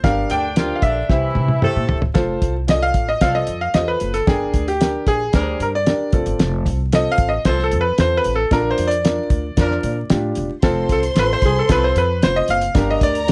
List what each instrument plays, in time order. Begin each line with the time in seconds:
0.04 upright bass G1, upright piano D4 G4 A#4, grand piano F5, kick, snare, closed hi-hat
0.30 upright bass D2, horn section D3 D4, grand piano G5, closed hi-hat
0.56 horn section F3 F4, upright piano D4 G4 A#4, snare, closed hi-hat
0.76 grand piano F5
0.82 upright bass A#1, horn section D3 D4, grand piano E5, kick, closed hi-hat
1.09 upright bass C2, horn section E3 E4, upright piano E4 G4 C5, kick, snare
1.35 upright bass C3, high tom
1.48 high tom
1.62 horn section A3 A4, upright piano E4 G4 C5, mid tom
1.76 upright bass A#2
1.89 upright bass E1, floor tom
2.02 floor tom
2.14 upright bass F1, upright piano F4 A4 C5, kick, snare, closed hi-hat
2.42 upright bass C2, kick, closed hi-hat
2.67 upright piano F4 G#4 D5, grand piano D#5, snare, closed hi-hat
2.74 upright piano A4
2.82 grand piano F5
2.94 upright bass A1, kick, closed hi-hat
3.09 grand piano D#5
3.21 upright bass C2, horn section F3 C4 A4, upright piano F4 A4 D5, grand piano F5, kick, snare, closed hi-hat
3.35 grand piano D#5
3.47 upright bass F2, closed hi-hat
3.61 grand piano F5
3.74 upright bass E2, upright piano F4 G4 C5, grand piano D#5, snare, closed hi-hat
3.80 upright piano A4
3.88 grand piano B4
4.00 upright bass F#1, closed hi-hat
4.14 grand piano A4, closed hi-hat
4.27 upright bass G1, upright piano D4 A#4 G5, grand piano G#4, kick, snare, closed hi-hat
4.53 upright bass D2, kick, closed hi-hat
4.68 grand piano G4, closed hi-hat
4.81 upright piano D4 G4 A#4, snare, closed hi-hat
5.07 upright bass A#1, grand piano G#4, kick, closed hi-hat
5.33 upright bass D2, horn section G3 D4 A#4, upright piano D4 G4 B4, kick, snare, closed hi-hat
5.41 upright piano C5
5.60 upright bass G2, grand piano A#4, closed hi-hat
5.75 grand piano D5
5.86 upright piano D4 G4 A#4, snare, closed hi-hat
6.13 upright bass F1, upright piano C4 F4 A4, kick, closed hi-hat
6.26 upright bass G1, closed hi-hat
6.39 upright bass F1, snare, closed hi-hat
6.66 upright bass C2, kick, closed hi-hat
6.92 upright piano C4 F4 A4, grand piano D#5, snare, closed hi-hat
7.12 grand piano F5
7.18 upright bass A1, kick, closed hi-hat
7.29 grand piano D#5
7.45 upright bass C2, horn section F3 C4 A4, upright piano C4 F4 A4, grand piano C5, kick, snare, closed hi-hat
7.59 snare
7.64 grand piano A4
7.71 upright bass F2, closed hi-hat
7.81 grand piano B4
7.98 upright bass E2, upright piano C4 F4 A4, grand piano C5, snare, closed hi-hat
8.17 grand piano B4
8.24 upright bass A1, closed hi-hat
8.35 grand piano A4
8.51 upright bass A#1, upright piano D4 F4 A4, grand piano A#4, kick, snare, closed hi-hat
8.58 upright piano A#4
8.71 grand piano C5
8.78 upright bass F2, closed hi-hat
8.88 grand piano D5, closed hi-hat
9.04 upright piano D4 F4 A#4, snare, closed hi-hat
9.30 upright bass D2, kick, closed hi-hat
9.57 upright bass F2, horn section F3 D4 A#4, upright piano D4 F4 A#4, kick, snare, closed hi-hat
9.71 snare
9.83 upright bass A#2, closed hi-hat
10.10 upright bass A2, upright piano D4 F4 G4, snare, closed hi-hat
10.35 upright bass E1, closed hi-hat
10.62 upright bass F1, upright piano C4 F4 A4, violin section C5 C6, kick, snare, closed hi-hat
10.89 upright bass C2, grand piano A4, kick, closed hi-hat
11.03 closed hi-hat
11.15 upright bass A1, upright piano C4 F4 A4, grand piano B4, snare, closed hi-hat
11.33 grand piano C5
11.42 upright bass C2, grand piano G#4, kick, closed hi-hat
11.59 grand piano A4
11.68 upright bass C2, horn section F3 C4 A4, upright piano C4 F4 A4, grand piano B4, kick, snare, closed hi-hat
11.84 grand piano C5
11.95 upright bass F2, grand piano B4, closed hi-hat
12.22 upright bass F1, upright piano C4 F4 C5, grand piano C5, snare, closed hi-hat
12.36 grand piano D#5
12.48 upright bass F#1, grand piano F5, closed hi-hat
12.61 closed hi-hat
12.75 upright bass G1, upright piano D4 G4 A#4, violin section A#4 A#5, kick, snare, closed hi-hat
12.91 grand piano D#5
13.01 upright bass D2, grand piano D5, kick, closed hi-hat
13.15 closed hi-hat
13.27 upright piano D4 G4 A#4, closed hi-hat